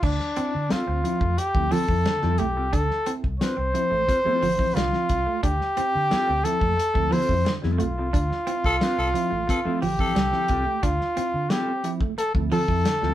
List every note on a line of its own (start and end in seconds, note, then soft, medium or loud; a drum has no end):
0.03 0.18 D2 loud
0.03 0.19 D3 medium
0.03 0.16 D4 medium
0.03 0.73 D4 loud
0.03 kick loud
0.03 crash loud
0.20 muted clean electric guitar stroke soft
0.20 snare soft
0.36 0.52 C4 medium
0.36 0.50 C4 medium
0.36 0.52 E4 medium
0.36 muted fingered electric bass stroke soft
0.36 closed hi-hat medium
0.55 0.69 D3 loud
0.69 0.83 C4 medium
0.69 0.84 F4 medium
0.69 1.40 F4 loud
0.69 0.84 A4 medium
0.69 muted fingered electric bass stroke medium
0.69 snare loud
0.69 closed hi-hat medium
0.87 1.03 D2 medium
0.87 1.01 C4 medium
1.04 1.20 F3 medium
1.04 1.20 C4 medium
1.04 1.20 E4 loud
1.04 muted clean electric guitar stroke soft
1.04 closed hi-hat medium
1.21 1.36 F2 medium
1.21 1.34 A3 medium
1.21 kick medium
1.38 1.74 G4 loud
1.38 muted clean electric guitar stroke soft
1.38 closed hi-hat loud
1.55 1.70 D2 medium
1.55 1.71 F3 medium
1.55 1.68 A3 medium
1.55 1.71 C4 medium
1.55 1.71 E4 medium
1.55 kick loud
1.71 1.88 D3 medium
1.71 1.85 F3 medium
1.71 1.85 C4 medium
1.71 1.85 F4 medium
1.71 2.40 A4 loud
1.71 1.86 A4 medium
1.71 snare soft
1.71 open hi-hat medium
1.89 2.04 F2 medium
1.89 2.05 F3 medium
1.89 2.05 C4 medium
1.89 2.05 E4 medium
1.89 kick loud
2.06 2.22 D3 medium
2.06 muted clean electric guitar stroke soft
2.06 snare loud
2.06 closed hi-hat loud
2.22 2.38 F2 medium
2.22 2.38 F3 medium
2.22 2.36 G3 medium
2.22 2.39 C4 medium
2.22 2.36 C4 medium
2.22 2.39 E4 medium
2.22 2.36 F4 medium
2.22 2.35 A4 medium
2.22 snare soft
2.38 2.57 B1 loud
2.38 2.53 A3 medium
2.38 2.47 C4 soft
2.38 2.47 E4 soft
2.38 2.75 G4 loud
2.38 closed hi-hat medium
2.56 2.71 C2 medium
2.56 2.68 C4 soft
2.56 2.67 F4 medium
2.56 2.67 A4 medium
2.73 2.88 D2 loud
2.73 2.89 D3 medium
2.73 2.86 D4 medium
2.73 3.14 A4 loud
2.73 kick loud
2.73 closed hi-hat medium
2.90 muted clean electric guitar stroke medium
2.90 snare soft
3.06 3.20 C4 medium
3.06 3.23 C4 medium
3.06 3.23 E4 medium
3.06 closed hi-hat medium
3.24 3.39 C2 medium
3.24 kick medium
3.40 3.54 C4 medium
3.40 3.54 F4 medium
3.40 3.55 B4 medium
3.40 4.76 C5 loud
3.40 snare loud
3.40 closed hi-hat medium
3.57 3.73 C2 loud
3.57 3.70 C4 medium
3.74 3.90 F3 medium
3.74 3.90 C4 medium
3.74 3.90 E4 medium
3.74 muted clean electric guitar stroke soft
3.74 closed hi-hat medium
3.91 4.06 A1 medium
3.91 4.04 A3 medium
4.08 4.18 C4 medium
4.08 4.19 F4 medium
4.08 4.19 B4 medium
4.08 muted clean electric guitar stroke soft
4.08 kick loud
4.08 closed hi-hat loud
4.24 4.41 F3 medium
4.24 4.38 A3 medium
4.24 4.41 C4 medium
4.24 4.46 C4 medium
4.24 4.41 E4 medium
4.24 4.46 F4 medium
4.24 4.45 A4 medium
4.24 muted fingered electric bass stroke medium
4.42 4.72 A1 medium
4.42 4.58 D3 medium
4.42 4.56 F3 loud
4.42 open hi-hat medium
4.58 4.74 F3 medium
4.58 4.74 C4 medium
4.58 4.74 E4 medium
4.58 kick medium
4.75 4.91 C2 medium
4.75 4.91 D3 medium
4.75 4.89 G3 medium
4.75 5.43 F4 loud
4.75 snare loud
4.75 closed hi-hat loud
4.92 5.08 F3 medium
4.92 5.08 C4 medium
4.92 5.08 E4 medium
4.92 snare soft
5.09 5.25 C2 medium
5.09 muted clean electric guitar stroke soft
5.09 kick loud
5.09 closed hi-hat medium
5.26 5.40 A3 medium
5.43 5.58 D2 loud
5.43 5.59 D3 medium
5.43 5.56 D4 loud
5.43 6.46 G4 loud
5.43 kick loud
5.43 closed hi-hat loud
5.60 muted clean electric guitar stroke soft
5.60 snare soft
5.76 5.93 C4 medium
5.76 5.90 C4 medium
5.76 5.93 E4 medium
5.76 muted fingered electric bass stroke medium
5.76 closed hi-hat medium
5.95 6.10 D3 loud
6.10 6.31 C4 medium
6.10 6.31 F4 medium
6.10 6.32 A4 medium
6.10 muted fingered electric bass stroke medium
6.10 snare loud
6.10 closed hi-hat medium
6.28 6.43 D2 loud
6.28 6.41 C4 medium
6.44 6.60 F3 medium
6.44 6.60 C4 medium
6.44 6.61 E4 loud
6.44 7.14 A4 loud
6.44 muted clean electric guitar stroke soft
6.44 closed hi-hat medium
6.60 6.76 F2 loud
6.60 6.74 A3 medium
6.60 kick loud
6.77 muted clean electric guitar stroke soft
6.77 closed hi-hat loud
6.94 7.10 D2 medium
6.94 7.11 F3 medium
6.94 7.07 A3 medium
6.94 7.11 C4 medium
6.94 7.11 E4 medium
6.94 kick loud
7.11 7.28 D3 medium
7.11 7.25 F3 medium
7.11 7.32 C4 medium
7.11 7.33 F4 loud
7.11 7.33 A4 loud
7.11 7.53 C5 loud
7.11 snare soft
7.11 open hi-hat medium
7.29 7.44 F2 medium
7.29 7.45 F3 medium
7.29 7.45 C4 medium
7.29 7.45 E4 medium
7.29 kick medium
7.45 7.62 D3 medium
7.45 muted clean electric guitar stroke soft
7.45 snare loud
7.45 closed hi-hat loud
7.62 7.78 F2 medium
7.62 7.79 F3 medium
7.62 7.75 G3 medium
7.62 7.79 C4 medium
7.62 7.84 C4 medium
7.62 7.79 E4 medium
7.62 7.84 F4 medium
7.62 7.83 A4 medium
7.62 snare soft
7.78 7.98 B1 medium
7.78 7.92 A3 medium
7.78 7.87 C4 soft
7.78 7.87 E4 soft
7.78 9.78 F4 loud
7.78 closed hi-hat medium
7.98 8.12 C2 medium
7.98 8.08 C4 medium
7.98 8.08 F4 medium
7.98 8.07 A4 medium
8.13 8.29 D2 loud
8.13 8.29 D3 medium
8.13 8.26 D4 medium
8.13 kick loud
8.13 closed hi-hat loud
8.30 muted clean electric guitar stroke soft
8.30 snare soft
8.47 8.60 C4 medium
8.47 8.63 C4 medium
8.47 8.63 E4 medium
8.47 closed hi-hat medium
8.64 8.79 C2 medium
8.64 8.76 A4 loud
8.64 kick loud
8.81 8.95 C4 medium
8.81 8.95 F4 medium
8.81 8.95 B4 medium
8.81 snare loud
8.81 closed hi-hat medium
8.97 9.13 C2 loud
8.97 9.11 C4 medium
8.97 9.09 A4 loud
9.14 9.30 F3 loud
9.14 9.30 C4 medium
9.14 9.31 E4 loud
9.14 muted clean electric guitar stroke soft
9.14 closed hi-hat medium
9.31 9.47 A1 medium
9.31 9.44 A3 medium
9.48 9.59 C4 medium
9.48 9.59 F4 medium
9.48 9.60 A4 loud
9.48 9.60 B4 medium
9.48 muted clean electric guitar stroke soft
9.48 kick loud
9.48 closed hi-hat loud
9.65 9.81 F3 medium
9.65 9.78 A3 medium
9.65 9.81 C4 medium
9.65 9.79 C4 medium
9.65 9.81 E4 medium
9.65 9.79 F4 medium
9.65 9.79 A4 loud
9.65 muted fingered electric bass stroke soft
9.82 10.12 A1 medium
9.82 9.98 D3 medium
9.82 9.95 F3 medium
9.82 10.85 G4 loud
9.82 open hi-hat medium
9.99 10.15 F3 medium
9.99 10.15 C4 medium
9.99 10.15 E4 medium
9.99 10.48 A4 loud
9.99 kick medium
10.15 10.31 C2 medium
10.15 10.32 D3 medium
10.15 10.29 G3 medium
10.15 snare loud
10.15 closed hi-hat loud
10.32 10.48 F3 medium
10.32 10.48 C4 medium
10.32 10.48 E4 medium
10.32 snare soft
10.48 10.64 C2 medium
10.48 10.56 C4 soft
10.48 10.63 C4 medium
10.48 10.56 E4 soft
10.48 10.63 F4 medium
10.48 10.64 A4 medium
10.48 muted clean electric guitar stroke soft
10.48 kick medium
10.48 closed hi-hat medium
10.65 10.79 A3 medium
10.83 10.98 D2 loud
10.83 10.99 D3 medium
10.83 10.96 D4 medium
10.83 11.51 F4 loud
10.83 kick loud
10.83 closed hi-hat loud
11.00 muted clean electric guitar stroke soft
11.00 snare soft
11.16 11.32 C4 medium
11.16 11.30 C4 medium
11.16 11.33 E4 medium
11.16 muted fingered electric bass stroke soft
11.16 closed hi-hat medium
11.34 11.49 D3 loud
11.50 11.71 C4 medium
11.50 11.71 F4 medium
11.50 11.91 G4 medium
11.50 11.72 A4 medium
11.50 snare loud
11.50 closed hi-hat medium
11.68 11.81 C4 medium
11.84 12.00 F3 medium
11.84 12.00 C4 medium
11.84 12.00 E4 medium
11.84 muted clean electric guitar stroke soft
11.84 closed hi-hat medium
12.01 12.14 A3 medium
12.01 kick loud
12.18 12.33 A4 loud
12.18 muted clean electric guitar stroke soft
12.18 closed hi-hat loud
12.34 12.50 D2 loud
12.34 12.50 F3 medium
12.34 12.48 A3 medium
12.34 12.51 C4 medium
12.34 12.51 E4 medium
12.34 kick loud
12.52 12.68 D3 medium
12.52 12.65 F3 medium
12.52 12.65 C4 medium
12.52 12.65 F4 medium
12.52 13.14 A4 loud
12.52 12.66 A4 medium
12.52 open hi-hat medium
12.68 12.83 F2 medium
12.68 12.85 F3 medium
12.68 12.85 C4 medium
12.68 12.85 E4 medium
12.68 kick loud
12.85 13.02 D3 medium
12.85 muted clean electric guitar stroke soft
12.85 snare loud
12.85 closed hi-hat loud
13.01 13.14 D2 medium
13.01 13.14 F3 medium
13.01 13.14 G3 medium
13.01 13.14 C4 medium
13.01 13.14 E4 medium
13.01 13.14 F4 medium
13.01 13.14 A4 medium
13.01 snare soft